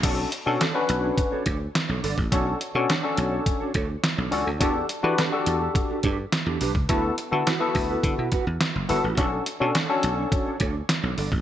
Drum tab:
CC |x---------------|----------------|----------------|----------------|
HH |x-x-x-x-x-x-x-o-|x-x-x-x-x-x-x-o-|x-x-x-x-x-x-x-o-|x-x-x-o-x-x-x-o-|
SD |----o-------o---|----o-------o---|----o-------o---|----o-------o---|
BD |o-------o-o----o|o-------o-o-----|o-------o-o----o|o-----o-o-o-----|

CC |----------------|
HH |x-x-x-x-x-x-x-o-|
SD |----o-------o---|
BD |o-------o-o----o|